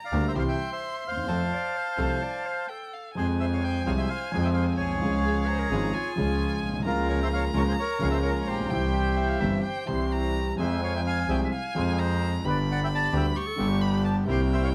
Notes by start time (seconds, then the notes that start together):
Already playing: A#5
0.05 D5 F5
0.11 D2 D3 G3 A#3 D4 G4
0.28 C5 E5
0.34 C2 C3 E3 G3 C4 E4 G4 C6
0.39 C5 F5
0.48 E5 G5
0.72 C5 E5
1.06 D#2 C5 F5
1.11 D2
1.17 D#2
1.24 E2 C4 F4
1.28 F2 F3 A3 C4 A4 A5
1.52 D5
1.76 C5
1.96 C2 C3 F3 A3 C4 F4 A4
2.23 D5
2.46 C5
2.69 A4 G5
2.93 F5
3.15 F2 F3 G#3 C4 F4 G#4 C5 G#5
3.40 C5 E5
3.53 C#5 F5
3.64 C5 G5
3.86 C2 C3 F3 G#3 C4 F4 G#4 C#5 F5
3.97 C5 E5
4.09 C5 F5
4.31 F2 F3 G#3 C4 F4 G#4 F5 G#5
4.35 G#4
4.42 E5 G5
4.54 C5 F5
4.77 B1 G#4 C#5
4.85 A#1
4.92 B1
4.99 C2 C#2 F3 G#3 C#4 F4 G#4 F5
5.03 C#2 C#3 C#4 G#4
5.24 G#4
5.45 B4 A#5
5.49 C5
5.59 A#4
5.70 G#1 G#2 F3 G#3 C#4 F4 G#4
5.93 F4 G#5
6.16 C#2 C#3 F3 G#3 C#4 F4 G#4
6.63 B1
6.68 A#1
6.73 B1
6.79 C2
6.84 C#2 C#3 F3 A#3 C#4 F4 A#4 A#5
7.09 A#4 C#5
7.23 C5 E5
7.33 C#5 F5
7.53 C#2 C#3 F3 A#3 C#4 F4 A#4
7.57 A#4 C#5
7.68 G#4 C5
7.79 A#4 C#5
7.99 C#2 C#3 F3 A#3 C#4 F4 A#4 F5
8.04 C#5
8.11 C5 E5
8.23 A#4 C#5
8.41 C#5
8.47 A#1 G4 C5
8.53 A1
8.60 A#1
8.66 B1 C4
8.70 C2 C3 E3 G3 C4 E4 G4 G5
8.93 E5
9.17 E5 G5
9.29 F5
9.39 G1 G2 E3 G3 C4 E4 G4 E5
9.63 C5 G5
9.86 C2 C3 E3 G3 C4 E4 G4 C6
9.90 G4
10.12 A#5
10.57 F2 F3 G#3 C4 F4 G#4 C5 E5 G#5
10.61 G#4
10.83 C#5 F5
10.95 E5 G5
11.07 F5 G#5
11.28 C2 C3 F3 G#3 C4 F4 G#4 E5 G5
11.45 E5
11.52 F5 G#5
11.75 F2 F3 G#3 C4 F4 G#4
11.99 C5 A#5
12.43 G1 G2 D3 G3 B3 D4 G4 B4 B5
12.47 G4 D5
12.71 D5 F#5
12.84 E5 G5
12.95 D5 A5
13.12 D2 D3 G3 B3 D4 G4
13.17 E5 G5
13.35 G4 C#6
13.47 A4
13.56 G1 G2 D3 G3 B3 D4 G4
13.60 G4
13.69 G4
13.81 B5
14.05 A5
14.25 C2 C3 G3 A#3 C4 E4 A#4 G5
14.31 G4 C5
14.53 C5 E5
14.64 C#5 F5